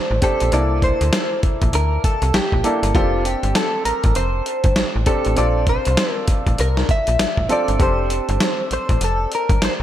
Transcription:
Already playing: C4 D4 G4 A4 C5
0.11 A1
0.22 C4 D4 G4 A4 C5, kick, closed hi-hat
0.40 A#1, closed hi-hat
0.52 C2 A#3 D4 E4 A4 D5, closed hi-hat
0.82 C5, kick, closed hi-hat
1.01 D2, closed hi-hat
1.13 snare, closed hi-hat
1.43 A#1, kick, closed hi-hat
1.62 A#1, kick, closed hi-hat
1.73 D2 A#4, closed hi-hat
2.04 A4, kick, closed hi-hat
2.22 C2, closed hi-hat
2.34 G4, snare, closed hi-hat
2.52 A#1, kick
2.64 A#3 D4 E4 A4, closed hi-hat
2.83 G1, closed hi-hat
2.94 F1 C4 D4 F4 G4 A4, kick, closed hi-hat
3.25 G4, closed hi-hat
3.43 G1, closed hi-hat
3.55 A4, snare, closed hi-hat
3.85 A1 A#4, closed hi-hat
4.04 A1, kick, closed hi-hat
4.15 F1 C5, closed hi-hat
4.46 closed hi-hat
4.64 G1, kick, closed hi-hat
4.76 A1, snare, closed hi-hat
4.96 A1
5.06 C4 D4 G4 A4, kick, closed hi-hat
5.25 A1, closed hi-hat
5.36 A#1 C4 D4 F4 A4 D5, closed hi-hat
5.67 C5, kick, closed hi-hat
5.85 C2, closed hi-hat
5.97 snare, closed hi-hat
6.12 A#4
6.28 A1, kick, closed hi-hat
6.47 A1, kick, closed hi-hat
6.58 C2 A#4, closed hi-hat
6.77 snare
6.89 E5, kick, closed hi-hat
7.07 A#1, closed hi-hat
7.19 snare, closed hi-hat
7.37 A1, kick
7.49 C4 D4 F4 A4 D5, closed hi-hat
7.68 G1, closed hi-hat
7.79 F1 C4 D4 G4 A4 C5, kick, closed hi-hat
8.10 closed hi-hat
8.29 G1, closed hi-hat
8.40 snare, closed hi-hat
8.71 A1 C5, closed hi-hat
8.89 A1, kick, closed hi-hat
9.01 F1 A4, closed hi-hat
9.32 A#4, closed hi-hat
9.49 G1, kick, closed hi-hat
9.62 C5, snare, closed hi-hat

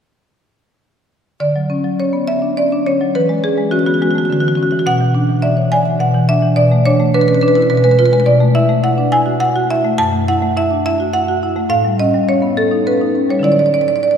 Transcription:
1.40 D3 D5
1.56 F#3
1.70 C#4
1.84 F#3
2.00 C#4 C#5
2.13 B3
2.28 C#4 E5
2.42 D4
2.57 C#4 D5
2.72 D4
2.86 C#4 C#5
3.01 F#3
3.15 E3 B4
3.29 G#3
3.44 C#4 G#4
3.58 G#3
3.71 C#4 F#4
3.79 F#4
3.86 B3 F#4
3.94 F#4
4.01 G#3 F#4
4.11 F#4
4.15 A3 F#4
4.25 F#4
4.30 D3 F#4
4.40 E3 F#4
4.48 F#4
4.55 C#4 F#4
4.63 F#4
4.71 E3 F#4
4.79 F#4
4.86 B2 F#5
5.01 E3
5.15 D4
5.30 E3
5.42 D5 E5
5.57 C#5
5.72 D5 G#5
5.86 E5
6.00 B2 F#5
6.14 E3
6.29 D4 E5
6.42 E3
6.56 B2 D5
6.72 A3
6.86 D4 C#5
7.00 A3
7.14 D4 B4
7.21 B4
7.28 C#4 B4
7.35 B4
7.41 D4 B4
7.48 B4
7.55 E4 B4
7.62 B4
7.70 B2 B4
7.77 B4
7.84 G#3 B4
7.91 B4
7.99 F4 B4
8.06 B4
8.12 G#3 B4
8.20 B4
8.26 B2 D5
8.40 A3
8.55 E4 E5
8.69 A3
8.84 E4 F#5
8.98 D4
9.12 E4 G#5
9.26 F#4
9.40 E4 F#5
9.56 F#4
9.71 E4 E5
9.85 A3
9.98 F#2 A5
10.13 A3
10.28 E4 F#5
10.42 A3
10.57 E4 E5
10.71 D4
10.86 E4 E5
11.00 F#4
11.13 E4 F#5
11.28 F#4
11.43 E4
11.56 A3
11.69 A2 F5
11.85 G3
12.00 C#4 D#5
12.14 G3
12.29 C#4 C#5
12.42 B3
12.57 C#4 A4
12.71 D#4
12.87 C#4 B4
13.01 D#4
13.15 C#4
13.29 G3 C#5
13.39 D3 F#3 E4
13.44 D5
13.52 D5
13.59 D5
13.66 D5
13.74 D5
13.81 D5
13.88 D5
13.96 D5
14.03 D5
14.11 D5

